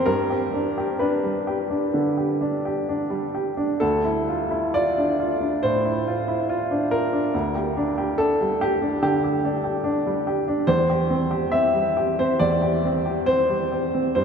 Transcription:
0.06 1.91 G2 medium
0.06 1.01 A#4 medium
0.30 0.68 G4 soft
0.54 0.92 D4 soft
0.78 1.15 G4 soft
0.99 1.38 D4 soft
0.99 3.34 B4 medium
1.24 1.62 G3 soft
1.47 1.85 G4 medium
1.70 2.08 D4 soft
1.94 2.32 D3 soft
2.17 2.55 G4 soft
2.41 2.79 D4 soft
2.65 3.02 G4 soft
2.89 3.26 D4 medium
3.10 3.48 G3 soft
3.35 3.72 G4 soft
3.57 3.81 D4 soft
3.80 5.58 D2 medium
3.80 4.75 A4 medium
4.05 4.43 E4 soft
4.29 4.67 F4 soft
4.51 4.88 E4 soft
4.74 5.11 F4 soft
4.74 5.62 D5 medium
4.98 5.33 D4 soft
5.20 5.54 F4 soft
5.41 5.75 D4 soft
5.63 5.97 A2 soft
5.63 6.90 C5 medium
5.85 6.18 E4 soft
6.08 6.40 F4 soft
6.28 6.61 E4 soft
6.49 6.82 F4 medium
6.71 7.04 D4 soft
6.91 7.25 F4 soft
6.91 8.19 A#4 medium
7.13 7.34 D4 soft
7.34 8.98 D2 medium
7.55 7.89 G4 soft
7.77 8.10 D4 medium
7.98 8.31 G4 medium
8.18 8.52 D4 soft
8.18 8.60 A4 medium
8.41 8.74 G3 soft
8.61 9.01 G4 medium
8.82 9.14 D4 soft
9.02 9.35 D3 soft
9.02 9.23 G4 medium
9.24 9.56 G4 soft
9.44 9.76 D4 medium
9.64 9.97 G4 soft
9.84 10.17 D4 medium
10.06 10.39 G3 medium
10.27 10.60 G4 soft
10.48 10.68 D4 soft
10.67 12.35 E2 medium
10.67 11.53 C5 medium
10.90 11.23 G4 soft
11.10 11.44 C4 soft
11.31 11.66 G4 medium
11.52 11.87 C4 soft
11.52 12.17 E5 medium
11.74 12.09 G3 soft
11.97 12.31 G4 medium
12.19 12.54 C4 soft
12.19 12.40 C5 medium
12.39 14.11 E2 medium
12.39 13.26 D5 medium
12.62 12.96 G4 soft
12.85 13.19 C4 soft
13.06 13.40 G4 soft
13.26 13.62 C4 soft
13.26 14.14 C5 medium
13.50 13.84 G3 soft
13.72 14.07 G4 soft
13.94 14.16 C4 soft
14.15 14.24 G2 soft
14.15 14.24 C5 medium

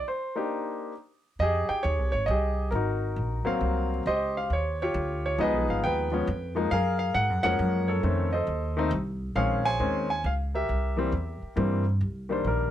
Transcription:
0.08 0.92 C5 medium
0.36 0.92 A#3 medium
0.36 0.92 D4 medium
0.36 0.92 D#4 medium
0.36 0.93 G4 medium
1.39 1.67 F2 medium
1.39 2.11 G4 medium
1.39 2.11 G#4 medium
1.39 1.70 D#5 medium
1.69 1.82 G5 medium
1.69 muted upright bass stroke soft
1.83 1.99 D#2 medium
1.83 2.10 C#5 medium
1.99 2.12 C2 medium
2.12 2.27 G#1 medium
2.12 2.28 C#5 medium
2.26 2.71 C2 medium
2.26 2.70 G4 medium
2.26 2.68 D#5 medium
2.30 2.70 G#4 medium
2.71 3.15 G#1 medium
2.71 3.86 A#4 medium
2.75 3.88 D#4 medium
2.75 3.88 F#4 medium
3.16 3.44 A#1 medium
3.45 4.01 F#3 medium
3.45 4.02 A#3 medium
3.45 4.02 C4 medium
3.45 4.02 F5 medium
3.45 muted upright bass stroke soft
3.61 4.04 C2 medium
4.06 4.48 C#2 medium
4.06 4.76 G4 medium
4.06 4.76 C5 medium
4.06 4.34 D#5 medium
4.37 4.51 F5 medium
4.50 4.93 D#2 medium
4.50 4.81 C#5 medium
4.82 5.36 F4 medium
4.82 5.36 G4 medium
4.82 5.22 C#5 medium
4.94 5.37 D2 medium
5.26 5.39 C#5 medium
5.38 5.53 C#2 medium
5.38 6.06 F3 medium
5.38 6.06 G#3 medium
5.38 6.07 B3 medium
5.38 6.07 D#4 medium
5.38 5.67 D#5 medium
5.42 6.10 G#4 medium
5.42 5.84 B4 medium
5.53 5.67 B1 medium
5.68 5.82 G#1 medium
5.68 5.82 F5 medium
5.84 6.26 D#2 medium
5.84 6.54 B4 medium
5.84 6.53 G5 medium
6.12 6.25 F3 medium
6.12 6.25 G#3 medium
6.12 6.26 B3 medium
6.12 6.26 C#4 medium
6.27 6.70 F2 medium
6.55 6.69 F3 medium
6.55 6.69 G#3 medium
6.55 6.69 A#3 medium
6.55 6.70 D#4 medium
6.71 7.14 F#2 medium
6.71 7.42 G#4 medium
6.71 7.42 A#4 medium
6.71 6.97 F5 loud
6.99 7.13 F5 medium
7.14 7.29 G#2 medium
7.14 7.42 F#5 loud
7.29 7.43 F#2 soft
7.43 7.58 F2 medium
7.43 8.00 F3 medium
7.43 8.00 G#3 medium
7.43 8.00 A#3 medium
7.43 8.01 C#4 medium
7.43 8.00 A#4 medium
7.43 7.86 C#5 medium
7.43 7.89 F#5 loud
7.59 8.02 F#2 medium
7.88 8.33 A4 medium
7.88 8.29 C#5 medium
8.03 8.46 F2 medium
8.03 8.30 D#3 medium
8.03 8.30 A3 medium
8.03 8.30 C4 medium
8.03 8.30 C#4 medium
8.33 8.88 A4 medium
8.33 8.88 C5 medium
8.33 8.87 D#5 medium
8.47 8.90 D#2 medium
8.77 8.90 D#3 medium
8.77 8.90 A3 medium
8.77 8.91 C4 medium
8.77 8.91 D#4 medium
8.91 9.34 C2 loud
9.35 9.78 A#1 medium
9.35 9.62 D#3 medium
9.35 9.62 G#3 medium
9.35 9.63 C4 medium
9.35 9.63 C#4 medium
9.35 10.06 G#4 medium
9.35 9.65 C#5 medium
9.35 9.66 F5 medium
9.65 10.20 C5 medium
9.65 10.21 C#5 medium
9.65 10.09 G#5 loud
9.79 10.22 D#2 medium
9.79 10.06 D#3 medium
9.79 10.07 G#3 medium
9.79 10.07 C4 medium
9.79 10.07 C#4 medium
10.10 10.25 G#5 medium
10.24 10.67 C#2 medium
10.24 10.33 F5 medium
10.54 11.53 G4 medium
10.54 11.53 A#4 medium
10.54 11.53 E5 medium
10.69 11.11 C2 medium
10.97 11.10 E3 medium
10.97 11.11 G3 medium
10.97 11.11 A#3 medium
10.97 11.11 C4 medium
11.12 11.40 E2 medium
11.42 muted upright bass stroke soft
11.56 11.99 G2 medium
11.56 11.83 E3 medium
11.56 11.83 G3 medium
11.56 11.83 A#3 medium
11.56 11.84 C4 medium
12.01 12.44 C2 medium
12.29 12.71 D#3 medium
12.29 12.71 G3 medium
12.29 12.71 A#3 soft
12.29 12.71 D4 medium
12.29 12.45 C5 medium
12.44 12.71 A#1 medium
12.44 12.71 A#4 medium

